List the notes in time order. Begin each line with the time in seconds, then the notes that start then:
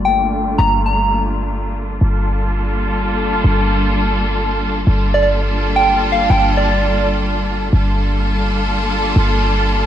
Already playing: G1 G3 A3 A#3 D4 F4
0.05 G5
0.58 G1 A#5
0.86 A#5
2.01 G1 G3 A#3 D4 F4 A4
3.44 G1
4.87 G1 G3 A#3 D4 F4 A4
5.14 D5
5.23 D5
5.76 G5
6.12 F5
6.30 G1 G5
6.39 G5
6.57 D5
7.73 G1 G3 A#3 D4 F4 A4
9.16 G1